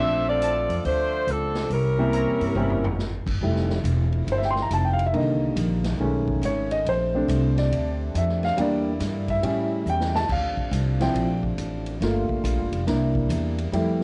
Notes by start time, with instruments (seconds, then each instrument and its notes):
Already playing: saxophone section D4 A4 C5 E5
0.00 upright bass A#1, grand piano F3 A3 C4 D4 E5
0.28 saxophone section C4 F4 A4 D5
0.42 trumpet section E4 C5 D5 A5, closed hi-hat
0.69 upright bass F2, open hi-hat
0.85 upright bass D2, saxophone section A3 D4 F4 C5, open hi-hat
1.27 upright bass C#2, saxophone section F3 C4 D4 A4, closed hi-hat
1.55 snare, open hi-hat
1.70 upright bass C2, saxophone section G3 C#4 E4 A#4, open hi-hat
1.99 grand piano C3 G3 A#3 C#4 E4
2.13 trumpet section E4 C5 C#5 A#5, closed hi-hat
2.27 upright bass E2
2.41 upright bass G2, open hi-hat
2.55 upright bass G1, grand piano G3 A#3 C4 C#4 E4, mid tom
2.70 floor tom
2.84 floor tom
2.99 snare
3.26 upright bass G1, kick, crash
3.41 upright bass F1, trombone section C3 F3 A3 E4, grand piano G3 A3 E4
3.56 snare
3.70 snare
3.84 upright bass E1, hi-hat pedal, ride
4.12 ride
4.27 upright bass G1, ride
4.32 grand piano C5
4.38 grand piano E5, snare
4.45 grand piano G5
4.51 grand piano C6
4.56 snare
4.62 grand piano A#5
4.70 upright bass F1, grand piano A5, hi-hat pedal, ride
4.85 grand piano G5
4.93 grand piano F5
4.99 ride
5.06 grand piano E5
5.13 upright bass C2, grand piano D3 D#3 A#3 D#5, trombone section G3 A#3, ride
5.56 upright bass A#1, hi-hat pedal, ride
5.84 snare, ride
5.99 upright bass B1, trombone section C#3 A3, grand piano D#3 G#3 A3 C#4
6.28 kick
6.41 upright bass G#1, grand piano C#5, hi-hat pedal, ride
6.71 grand piano D#5, ride
6.85 upright bass A#1, trombone section C3 D4, grand piano C5, ride
7.14 grand piano A3 C4 D4
7.28 upright bass C2, hi-hat pedal, ride
7.57 grand piano D5, snare, ride
7.71 upright bass D2, ride
8.14 upright bass F2, grand piano E5, hi-hat pedal, ride
8.29 snare
8.43 grand piano F5, snare, ride
8.57 upright bass E2, trombone section D3 G3 A#3 E4, grand piano G3 A#3 D4, ride
8.61 grand piano D5
9.00 upright bass G2, snare, hi-hat pedal, ride
9.28 grand piano E5, kick, ride
9.43 upright bass A2, trombone section C#3 G3 A3, grand piano G3 C#4 E4, ride
9.86 upright bass E2, grand piano G5, hi-hat pedal
10.01 snare
10.15 grand piano A5, snare
10.29 upright bass D2, trombone section C3 F3 D4, grand piano F5, kick, crash
10.57 muted upright bass stroke, kick
10.71 upright bass C2, hi-hat pedal, ride
11.00 grand piano F3 C4 E4 G5, snare, ride
11.14 upright bass A#1, ride
11.43 kick
11.58 upright bass A1, hi-hat pedal, ride
11.86 ride
12.01 upright bass G1, trombone section D3 G3 F4, grand piano A3 A#3 F4, snare, ride
12.29 muted upright bass stroke, kick
12.44 upright bass A#1, hi-hat pedal, ride
12.58 upright bass G1
12.72 upright bass F1, ride
12.87 upright bass C2, trombone section C3 A#3 E4, grand piano A#3 D4 E4, snare, ride
13.15 kick
13.29 upright bass E2, hi-hat pedal, ride
13.58 ride
13.72 upright bass F2, trombone section C3 E3 A3, grand piano G3 A3 E4, ride